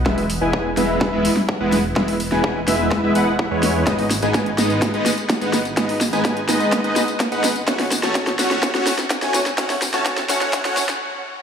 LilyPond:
<<
  \new Staff \with { instrumentName = "Supersaw synth" } { \time 4/4 \key e \major \tempo 4 = 126 <gis b e' b' e''>16 r8 <gis b e' b' gis''>8 r16 <gis b e' b' e''>8. <gis b e' b' e''>16 r8. <gis b e' b' fis''>16 r8 | <gis b e' b' e''>16 r8 <gis b e' b' gis''>8 r16 <gis b e' b' e''>8. <gis b e' b' e''>16 <gis b e' b' fis''>16 r8 <gis b e' b' cis''>8. | <gis b dis' b' dis''>16 r8 <gis b dis' b' gis''>8 r16 <gis b dis' b' dis''>8. <gis b dis' b' dis''>16 r8. <gis b dis' b' fis''>16 r8 | <gis b dis' b' dis''>16 r8 <gis b dis' b' gis''>8 r16 <gis b dis' b' dis''>8. <gis b dis' b' dis''>16 r8. <gis b dis' b' fis''>16 r8 |
<a cis' fis' cis'' fis''>16 r8 <a cis' fis' cis'' a''>8 r16 <a cis' fis' cis'' fis''>8. <a cis' fis' cis'' fis''>16 r8. <a cis' fis' cis'' gis''>16 r8 | <a cis' fis' cis'' fis''>16 r8 <a cis' fis' cis'' a''>8 r16 <a cis' fis' cis'' fis''>8. <a cis' fis' cis'' fis''>16 r4. | }
  \new Staff \with { instrumentName = "Detuned saw bass" } { \clef bass \time 4/4 \key e \major e,,8. e,,8. e,,8. e,,16 r8. e,,8. | e,,8. e,,8. e,,8. e,,16 e,,8. e,8. | gis,,8. gis,,8. gis,,8. gis,,16 r8. gis,,8. | gis,,8. gis,,8. gis,,8. gis,,16 r8. gis,,8. |
a,,8. a,,8. a,,8. a,,16 r8. a,,8. | a,,8. a,,8. a,,8. a,,16 r4. | }
  \new DrumStaff \with { instrumentName = "Drums" } \drummode { \time 4/4 <bd sn>16 hho16 hho8 bd8 <hho sn>8 <bd sn>8 hho16 sn16 bd8 <hho sn>8 | <bd sn>16 hho16 hho16 sn16 bd8 <hho sn>8 <bd sn>8 hho8 bd8 <hho sn>8 | <hh bd sn tamb>16 hho16 <hho sn tamb>16 <hh tamb>16 <hh bd sn tamb>16 hh16 <hho sn tamb>16 <hh tamb>16 <hh bd sn tamb>16 hh16 <hho sn tamb>16 <hh tamb>16 <hh bd sn tamb>16 <hh tamb>16 <hho sn tamb>16 <hh tamb>16 | <hh bd sn tamb>16 hho16 <hho sn tamb>16 <hh tamb>16 <hh bd sn tamb>16 hh16 <hho sn tamb>16 <hh tamb>16 <hh bd sn tamb>16 hh16 <hho sn tamb>16 <hh tamb>16 <hh bd sn tamb>16 <hh tamb>16 <hho sn tamb>16 <hh tamb>16 |
<hh bd sn tamb>16 <hho sn>16 <hho sn tamb>16 <hh sn tamb>16 <hh bd sn tamb>16 <hh sn>16 <hho sn tamb>16 <hh sn tamb>16 <hh bd sn tamb>16 <hh sn>16 <hho sn tamb>16 <hh sn tamb>16 <hh bd sn tamb>16 <hh sn tamb>16 <hho sn tamb>16 <hh sn tamb>16 | <hh bd sn tamb>16 <hho sn tamb>16 <hho sn tamb>16 <hh sn tamb>16 <hh bd sn tamb>16 <hh sn tamb>16 <hho sn tamb>16 <hh sn tamb>16 <hh bd sn tamb>16 <hh sn tamb>16 <hho sn tamb>16 <hh sn tamb>16 r4 | }
>>